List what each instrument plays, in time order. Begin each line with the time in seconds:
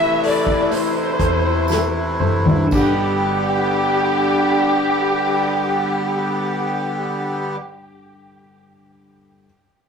Already playing: fingered electric bass A1, accordion C3 E3 A3 E4, upright piano A3 A4, clean electric guitar A3 E4 A4, french horn section E4, violin section E5
0.00 upright piano E4
0.23 clean electric guitar A4, upright piano A4, violin section D5, hi-hat pedal, open hi-hat
0.47 upright piano E4, kick
0.71 upright piano A3, clean electric guitar E4, violin section C5, hi-hat pedal, open hi-hat
0.96 upright piano E4
1.19 fingered electric bass E2, upright piano A4, clean electric guitar C5, kick, hi-hat pedal, open hi-hat
1.46 upright piano E4
1.68 clean electric guitar E4, upright piano A4, snare, tambourine
1.97 upright piano E4
2.20 fingered electric bass F#1, upright piano A4, clean electric guitar C5, mid tom
2.46 upright piano E4, floor tom
2.55 upright piano G2
2.65 upright piano D3, clean electric guitar G3
2.71 fingered electric bass G1, accordion D3 G3 B3 G4, upright piano G3, clean electric guitar B3, french horn section D4, violin section G4, kick, crash, tambourine
2.76 clean electric guitar D4 G4
2.83 upright piano B3, clean electric guitar B4
2.94 upright piano D4